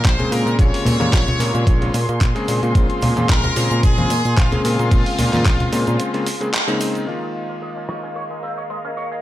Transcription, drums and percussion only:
0.05 kick, clap, closed hi-hat, cabasa
0.19 closed hi-hat, low conga
0.32 open hi-hat, cabasa
0.47 closed hi-hat, cabasa
0.59 kick, closed hi-hat, cabasa
0.74 open hi-hat
0.86 open hi-hat, low conga, cabasa
1.01 clap, closed hi-hat, high conga, cabasa
1.13 kick, clap, closed hi-hat, cabasa
1.28 closed hi-hat, low conga
1.40 open hi-hat, cabasa
1.55 closed hi-hat, cabasa
1.67 kick, closed hi-hat, cabasa
1.82 closed hi-hat
1.94 open hi-hat, cabasa
2.09 closed hi-hat, cabasa
2.21 kick, clap, closed hi-hat, cabasa
2.36 closed hi-hat
2.48 open hi-hat, cabasa
2.63 closed hi-hat, cabasa
2.75 kick, closed hi-hat, cabasa
2.90 closed hi-hat
3.02 open hi-hat, low conga, cabasa
3.17 closed hi-hat, high conga, cabasa
3.29 kick, clap, closed hi-hat, cabasa
3.44 closed hi-hat, low conga
3.56 open hi-hat, cabasa
3.71 closed hi-hat, cabasa
3.83 kick, closed hi-hat, cabasa
3.98 closed hi-hat, high conga
4.10 open hi-hat, cabasa
4.25 closed hi-hat, cabasa
4.37 kick, clap, closed hi-hat, cabasa
4.52 closed hi-hat, low conga
4.65 open hi-hat, cabasa
4.79 closed hi-hat, cabasa
4.91 kick, closed hi-hat, cabasa
5.06 open hi-hat
5.19 open hi-hat, low conga, cabasa
5.33 clap, closed hi-hat, high conga, cabasa
5.45 kick, clap, closed hi-hat, cabasa
5.60 closed hi-hat, low conga
5.73 open hi-hat, cabasa
5.87 closed hi-hat, cabasa
6.00 closed hi-hat, cabasa
6.14 closed hi-hat
6.26 open hi-hat, cabasa
6.41 closed hi-hat, cabasa
6.54 clap, closed hi-hat, cabasa
6.68 closed hi-hat
6.80 open hi-hat, cabasa
6.95 closed hi-hat, cabasa
7.08 closed hi-hat
7.22 closed hi-hat
7.35 tambourine
7.49 closed hi-hat, tambourine
7.62 closed hi-hat, tambourine
7.76 closed hi-hat
7.89 cross-stick, closed hi-hat, tambourine
8.03 closed hi-hat, tambourine
8.16 closed hi-hat, tambourine
8.30 closed hi-hat
8.43 closed hi-hat, tambourine
8.58 closed hi-hat, tambourine
8.70 closed hi-hat, tambourine
8.85 closed hi-hat
8.97 closed hi-hat, tambourine
9.12 closed hi-hat, tambourine

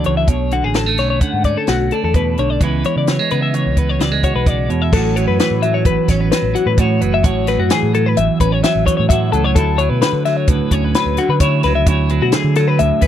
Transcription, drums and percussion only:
0.04 closed hi-hat
0.28 kick, closed hi-hat
0.51 closed hi-hat
0.74 snare, closed hi-hat
0.97 snare, closed hi-hat
1.21 kick, closed hi-hat
1.44 kick, closed hi-hat
1.67 snare, closed hi-hat
1.91 closed hi-hat
2.14 kick, closed hi-hat
2.38 closed hi-hat
2.61 kick, closed hi-hat
2.84 closed hi-hat
3.07 snare, closed hi-hat
3.30 closed hi-hat
3.54 closed hi-hat
3.77 kick, closed hi-hat
4.00 snare, closed hi-hat
4.23 kick, closed hi-hat
4.46 kick, closed hi-hat
4.70 closed hi-hat
4.93 kick, crash
5.17 closed hi-hat
5.39 snare, closed hi-hat
5.62 closed hi-hat
5.85 kick, closed hi-hat
6.08 kick, snare, closed hi-hat
6.32 snare, closed hi-hat
6.55 closed hi-hat
6.78 kick, closed hi-hat
7.01 closed hi-hat
7.24 kick, closed hi-hat
7.47 snare, closed hi-hat
7.70 snare, closed hi-hat
7.94 closed hi-hat
8.17 closed hi-hat
8.40 kick, closed hi-hat
8.63 snare, closed hi-hat
8.87 kick, closed hi-hat
9.10 kick, closed hi-hat
9.33 closed hi-hat
9.56 kick, closed hi-hat
9.79 closed hi-hat
10.02 snare, closed hi-hat
10.25 snare, closed hi-hat
10.47 kick, closed hi-hat
10.71 kick, closed hi-hat
10.94 snare, closed hi-hat
11.17 closed hi-hat
11.40 kick, closed hi-hat
11.63 snare, closed hi-hat
11.87 kick, closed hi-hat
12.09 closed hi-hat
12.32 snare, closed hi-hat
12.55 snare, closed hi-hat
12.79 closed hi-hat
13.01 kick, closed hi-hat

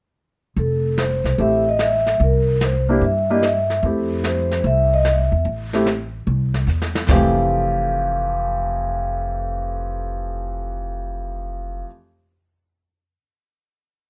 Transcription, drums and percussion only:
0.57 brush sweep, kick
0.97 snare, hi-hat pedal
1.25 snare
1.39 brush sweep, kick
1.79 snare, hi-hat pedal
2.07 snare
2.20 brush sweep, kick
2.61 snare, hi-hat pedal
3.02 brush sweep, kick
3.42 snare, hi-hat pedal
3.70 snare
3.83 brush sweep, kick
4.24 snare, hi-hat pedal
4.51 snare
4.65 brush sweep, kick
5.05 snare, hi-hat pedal
5.46 brush sweep, kick
5.73 snare
5.86 snare, hi-hat pedal
6.27 brush sweep, kick
6.54 snare
6.68 hi-hat pedal
6.82 snare
6.95 snare
7.09 kick, snare, splash

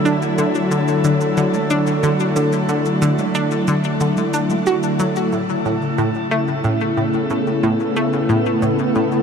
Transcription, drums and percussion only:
0.05 cabasa
0.22 cabasa
0.38 cabasa
0.55 cabasa
0.71 cabasa
0.88 cabasa
1.04 cabasa
1.21 cabasa
1.37 cabasa
1.54 high conga, cabasa
1.70 cabasa
1.87 cabasa
2.03 cabasa
2.20 cabasa
2.36 cabasa
2.52 cabasa
2.69 cabasa
2.85 cabasa
3.02 cabasa
3.18 high conga, cabasa
3.35 cabasa
3.51 cabasa
3.67 cabasa
3.84 cabasa
4.00 cabasa
4.17 high conga, cabasa
4.33 cabasa
4.50 high conga, cabasa
4.66 cabasa
4.83 cabasa
5.00 cabasa
5.16 cabasa
5.32 cabasa
5.49 high conga, cabasa
5.65 cabasa
5.82 cabasa
5.98 cabasa
6.15 cabasa
6.31 cabasa
6.48 high conga, cabasa
6.64 cabasa
6.81 cabasa
6.97 cabasa
7.13 cabasa
7.30 cabasa
7.47 high conga, cabasa
7.63 cabasa
7.80 cabasa
7.96 cabasa
8.13 cabasa
8.29 cabasa
8.46 high conga, cabasa
8.62 cabasa
8.79 cabasa
8.95 cabasa
9.12 cabasa

